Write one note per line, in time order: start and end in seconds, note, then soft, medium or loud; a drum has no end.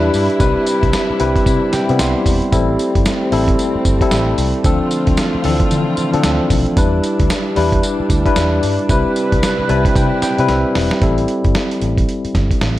0.00 0.40 G3 medium
0.00 2.48 G3 medium
0.00 0.42 D4 medium
0.00 2.48 D4 medium
0.00 0.42 E4 medium
0.00 2.49 E4 medium
0.00 0.41 B4 loud
0.14 0.27 G2 medium
0.14 open hi-hat medium
0.14 tambourine medium
0.30 closed hi-hat soft
0.40 0.53 C2 loud
0.40 2.50 C3 medium
0.40 1.06 G3 medium
0.40 1.06 C4 medium
0.40 0.48 D#4 medium
0.40 1.06 B4 medium
0.40 kick loud
0.40 closed hi-hat medium
0.40 tambourine medium
0.47 1.09 E4 medium
0.67 closed hi-hat medium
0.67 tambourine medium
0.83 0.92 C2 loud
0.83 kick loud
0.83 closed hi-hat medium
0.93 snare loud
0.93 closed hi-hat medium
0.93 tambourine medium
1.10 muted fingered electric bass stroke soft
1.19 1.34 C2 medium
1.19 1.72 G3 medium
1.19 1.73 C4 medium
1.19 1.73 E4 medium
1.19 1.73 B4 loud
1.19 closed hi-hat medium
1.36 kick medium
1.36 closed hi-hat medium
1.46 1.60 C3 medium
1.46 kick loud
1.46 closed hi-hat medium
1.46 tambourine medium
1.73 1.98 G5 medium
1.73 muted fingered electric bass stroke soft
1.73 snare medium
1.73 closed hi-hat medium
1.73 tambourine medium
1.89 1.98 C3 medium
1.89 2.42 G3 medium
1.89 2.42 B3 loud
1.89 2.42 C4 medium
1.89 2.42 E4 medium
1.89 closed hi-hat medium
1.99 2.13 C2 medium
1.99 2.49 C6 medium
1.99 snare loud
1.99 closed hi-hat medium
1.99 tambourine medium
2.26 2.39 E1 medium
2.26 kick medium
2.26 open hi-hat medium
2.26 tambourine medium
2.42 closed hi-hat soft
2.52 2.74 A1 loud
2.52 3.18 G3 medium
2.52 4.63 G3 medium
2.52 6.73 A3 medium
2.52 3.18 C4 medium
2.52 4.63 C4 medium
2.52 3.19 E4 medium
2.52 3.19 A4 loud
2.52 kick loud
2.52 closed hi-hat medium
2.52 tambourine medium
2.79 closed hi-hat medium
2.79 tambourine medium
2.95 3.04 G1 medium
2.95 kick loud
2.95 closed hi-hat medium
3.06 snare loud
3.06 closed hi-hat medium
3.06 tambourine medium
3.32 3.54 A1 loud
3.32 3.85 G3 medium
3.32 3.85 C4 medium
3.32 3.85 E4 medium
3.32 3.85 A4 loud
3.32 open hi-hat medium
3.48 kick loud
3.48 closed hi-hat medium
3.59 closed hi-hat medium
3.59 tambourine medium
3.75 muted fingered electric bass stroke soft
3.85 3.99 G1 medium
3.85 kick medium
3.85 closed hi-hat medium
3.85 tambourine medium
4.01 4.54 G3 medium
4.01 4.55 C4 medium
4.01 4.55 E4 medium
4.01 4.55 A4 loud
4.01 kick medium
4.01 closed hi-hat medium
4.11 4.34 A1 loud
4.11 snare loud
4.11 closed hi-hat medium
4.11 tambourine loud
4.38 4.52 C2 medium
4.38 open hi-hat medium
4.38 tambourine medium
4.54 closed hi-hat soft
4.64 4.78 D2 loud
4.64 6.75 D3 medium
4.64 5.31 F3 medium
4.64 6.75 C4 medium
4.64 5.31 C4 medium
4.64 5.31 D4 medium
4.64 8.86 E4 medium
4.64 6.75 F4 medium
4.64 5.31 A4 loud
4.64 kick loud
4.64 closed hi-hat medium
4.64 tambourine medium
4.91 closed hi-hat medium
4.91 tambourine medium
5.07 5.16 D2 medium
5.07 kick medium
5.07 closed hi-hat medium
5.17 snare loud
5.17 closed hi-hat medium
5.17 tambourine medium
5.35 muted fingered electric bass stroke soft
5.44 5.58 D2 medium
5.44 5.52 E3 medium
5.44 5.97 C4 medium
5.44 5.98 D4 medium
5.44 5.98 A4 loud
5.44 open hi-hat medium
5.51 6.01 F3 medium
5.60 kick loud
5.60 closed hi-hat medium
5.71 5.84 D3 medium
5.71 closed hi-hat medium
5.71 tambourine medium
5.97 muted fingered electric bass stroke soft
5.97 closed hi-hat medium
5.97 tambourine medium
6.13 6.22 D3 loud
6.13 6.66 F3 medium
6.13 6.67 C4 medium
6.13 6.67 D4 medium
6.13 6.67 A4 medium
6.13 closed hi-hat medium
6.23 6.38 D2 loud
6.23 snare loud
6.23 closed hi-hat medium
6.23 tambourine medium
6.50 6.64 B1 medium
6.50 kick medium
6.50 open hi-hat medium
6.50 tambourine medium
6.66 closed hi-hat soft
6.77 6.99 E2 loud
6.77 7.43 G3 medium
6.77 8.87 G3 medium
6.77 10.98 D4 medium
6.77 7.43 D4 medium
6.77 7.43 E4 medium
6.77 7.43 B4 loud
6.77 kick loud
6.77 closed hi-hat medium
6.77 tambourine medium
7.04 closed hi-hat medium
7.04 tambourine medium
7.20 7.28 D2 medium
7.20 kick medium
7.20 closed hi-hat medium
7.30 snare loud
7.30 closed hi-hat medium
7.30 tambourine medium
7.56 7.79 E2 loud
7.56 8.10 G3 medium
7.56 8.10 D4 medium
7.56 8.10 E4 medium
7.56 8.10 B4 medium
7.56 open hi-hat medium
7.72 kick loud
7.72 closed hi-hat medium
7.83 closed hi-hat medium
7.83 tambourine medium
8.00 muted fingered electric bass stroke medium
8.10 8.23 D2 loud
8.10 kick loud
8.10 closed hi-hat medium
8.10 tambourine medium
8.25 8.79 G3 medium
8.25 8.79 D4 medium
8.25 8.79 E4 medium
8.25 8.79 B4 loud
8.25 kick medium
8.25 closed hi-hat medium
8.36 8.59 E2 medium
8.36 snare loud
8.36 closed hi-hat medium
8.36 tambourine medium
8.63 8.77 G2 medium
8.63 open hi-hat medium
8.63 tambourine medium
8.79 closed hi-hat soft
8.89 9.03 C2 loud
8.89 11.00 C3 medium
8.89 9.55 G3 medium
8.89 11.00 G3 medium
8.89 9.56 C4 medium
8.89 11.00 E4 medium
8.89 9.56 E4 medium
8.89 11.00 B4 medium
8.89 9.56 B4 medium
8.89 kick loud
8.89 closed hi-hat medium
8.89 tambourine medium
9.16 closed hi-hat medium
9.16 tambourine medium
9.32 9.41 C2 medium
9.32 kick medium
9.32 closed hi-hat medium
9.43 snare loud
9.43 closed hi-hat medium
9.43 tambourine medium
9.59 muted fingered electric bass stroke soft
9.69 9.83 C2 medium
9.69 10.22 G3 medium
9.69 10.22 C4 medium
9.69 10.22 E4 medium
9.69 10.23 B4 loud
9.69 9.94 A5 medium
9.69 closed hi-hat medium
9.85 kick medium
9.85 closed hi-hat medium
9.96 10.09 C3 loud
9.96 10.21 G5 medium
9.96 kick loud
9.96 closed hi-hat medium
9.96 tambourine medium
10.22 10.47 G5 medium
10.22 muted fingered electric bass stroke soft
10.22 snare medium
10.22 closed hi-hat medium
10.22 tambourine medium
10.38 10.47 C3 loud
10.38 10.92 G3 medium
10.38 10.92 C4 medium
10.38 10.92 E4 medium
10.38 10.92 B4 loud
10.38 closed hi-hat medium
10.49 10.62 C2 loud
10.49 10.99 E5 medium
10.49 snare medium
10.49 closed hi-hat medium
10.75 10.89 E1 medium
10.75 snare loud
10.75 open hi-hat medium
10.91 snare medium
10.91 closed hi-hat soft
11.02 11.24 A1 loud
11.02 11.88 G3 medium
11.02 11.88 C4 medium
11.02 11.88 E4 medium
11.02 11.89 A4 medium
11.02 kick loud
11.02 closed hi-hat medium
11.18 closed hi-hat medium
11.28 closed hi-hat medium
11.44 11.53 G1 medium
11.44 kick medium
11.44 closed hi-hat soft
11.55 snare loud
11.55 closed hi-hat medium
11.71 closed hi-hat soft
11.81 12.04 A1 medium
11.81 closed hi-hat medium
11.98 kick medium
11.98 closed hi-hat medium
12.09 closed hi-hat medium
12.25 muted fingered electric bass stroke soft
12.25 closed hi-hat soft
12.35 12.48 G1 medium
12.35 kick medium
12.35 snare medium
12.35 closed hi-hat medium
12.51 kick medium
12.51 closed hi-hat medium
12.61 12.79 A1 loud
12.61 snare loud
12.61 closed hi-hat medium